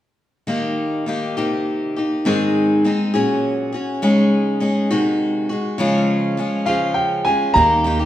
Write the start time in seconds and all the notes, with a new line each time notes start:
0.47 D#3 A#3 D#4 G4
1.06 D#3 A#3 D#4 G4
1.37 C3 D#3 A#3 D#4 G4
1.96 A#3 D#4 G4
2.25 G#2 D#3 G#3 C4 D#4 G#4
2.84 G#3 C4 D#4 G#4
3.14 A#2 F#3 C#4 F#4 G#4
3.72 C#4 F#4 G#4
4.02 C#3 G#3 C#4 D#4 G#4
4.60 G#3 C#4 D#4 G#4
4.91 C3 D#3 G#3 D#4 F#4
5.49 G#3 D#4 F#4
5.78 C#3 F3 G#3 C#4 F4
6.37 F3 G#3 C#4 F4
6.66 C#3 F3 G#3 C#4 F4 F5
6.94 G5
7.25 G#3 C#4 F4 G#5
7.54 D#2 D#3 A#3 D#4 A#5
7.58 G4
7.84 D#3 A#3 D#4 G4
7.99 A#3 D#4 G4